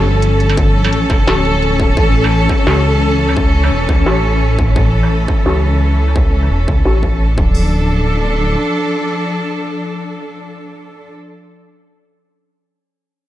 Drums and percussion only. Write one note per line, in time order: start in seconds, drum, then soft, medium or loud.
0.22 closed hi-hat medium
0.40 closed hi-hat soft
0.49 struck metal medium
0.57 kick loud
0.57 closed hi-hat medium
0.84 struck metal medium
0.93 closed hi-hat medium
1.10 kick loud
1.10 closed hi-hat soft
1.10 struck metal soft
1.28 snare loud
1.28 closed hi-hat medium
1.45 closed hi-hat soft
1.62 closed hi-hat medium
1.80 kick loud
1.80 closed hi-hat soft
1.97 kick loud
1.97 closed hi-hat medium
2.24 struck metal medium
2.32 closed hi-hat medium
2.49 kick loud
2.49 closed hi-hat soft
2.49 struck metal soft
2.67 snare loud
2.67 closed hi-hat medium
3.02 closed hi-hat medium
3.19 closed hi-hat soft
3.29 struck metal medium
3.37 kick loud
3.37 closed hi-hat medium
3.64 struck metal medium
3.72 closed hi-hat medium
3.89 kick loud
3.89 struck metal soft
4.06 snare loud
4.06 closed hi-hat medium
4.41 closed hi-hat medium
4.59 kick loud
4.76 kick loud
4.76 closed hi-hat medium
5.03 struck metal medium
5.11 closed hi-hat medium
5.28 kick medium
5.28 struck metal soft
5.46 snare loud
5.81 closed hi-hat medium
6.08 struck metal medium
6.16 kick loud
6.43 struck metal medium
6.51 closed hi-hat medium
6.68 kick medium
6.68 struck metal soft
6.85 snare loud
7.03 kick medium
7.21 closed hi-hat medium
7.38 kick loud